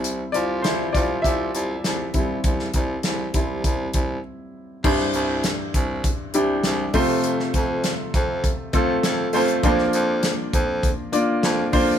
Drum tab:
CC |----------------|----------------|x---------------|----------------|
HH |x-x-x-x-x-x-x-x-|x-x-x-x-x-x-----|--x-x-x-x-x-x-o-|x-x-x-x-x-x-x-ox|
SD |----o-------o---|-o--o-----------|-o--o-------o---|-o--o-------o---|
BD |------o-o-----o-|o-o---o-o-o-----|o-----o-o-----o-|--o---o-o-o-----|

CC |----------------|
HH |x-x-x-x-x-x-x-o-|
SD |-o--o-------o---|
BD |o-----o-o-----o-|